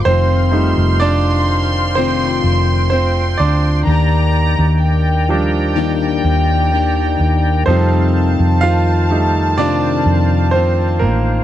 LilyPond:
<<
  \new Staff \with { instrumentName = "Violin section" } { \time 4/4 \key f \mixolydian \tempo 4 = 63 c'''1 | bes''4 g''2. | a''1 | }
  \new Staff \with { instrumentName = "Tonewheel organ" } { \time 4/4 \key f \mixolydian << { r1 | <d'' bes''>1 | c''1 | } \\ { <c'' f''>2 g''2~ | g''1 | f''1 | } >> }
  \new Staff \with { instrumentName = "Tonewheel organ" } { \time 4/4 \key f \mixolydian f'1 | ees1~ | ees1 | }
  \new Staff \with { instrumentName = "Grand piano" } { \time 4/4 \key f \mixolydian <c' c''>4 <d' d''>4 <c' c''>4 <c' c''>8 <d' d''>8~ | <d' d''>2~ <d' d''>8 r4. | <c' c''>4 <f' f''>4 <d' d''>4 <c' c''>8 <bes bes'>8 | }
  \new Staff \with { instrumentName = "Grand piano" } { \time 4/4 \key f \mixolydian r8 <g a ees'>8 r2. | r4. <f g d'>2~ <f g d'>8 | <g ees' a'>4. <g a ees'>8 r2 | }
  \new Staff \with { instrumentName = "Steel-string acoustic guitar" } { \time 4/4 \key f \mixolydian <f, c ees a c' f'>2 <f, c ees a c' f'>4 <a c' f'>4 | <ees bes d' g'>2 <ees bes d' g'>4 <ees bes d' g'>4 | <f, c ees a c' f'>4 <ees a c' f'>4 <f, c ees a c' f'>4 <ees a c' f'>4 | }
  \new Staff \with { instrumentName = "Fingered electric bass" } { \clef bass \time 4/4 \key f \mixolydian f,,8. f,,4.~ f,,16 f,,4 d,8 | ees,8. ees,4.~ ees,16 ees,4 ees,8 | f,8. f,4.~ f,16 f,4 a,,8 | }
>>